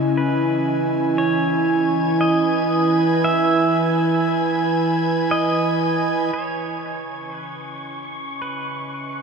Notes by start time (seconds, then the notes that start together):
Already playing: C#3 C#4 E4 D#5 G#5
0.15 E3 B4 G#6
1.18 C#5
1.36 B5
1.74 B4
2.21 D#5
3.24 E5
5.31 D#5
6.33 C#3 C#5 C#6
6.72 C#4
7.36 B4
7.85 D#5
8.33 E5
8.42 B4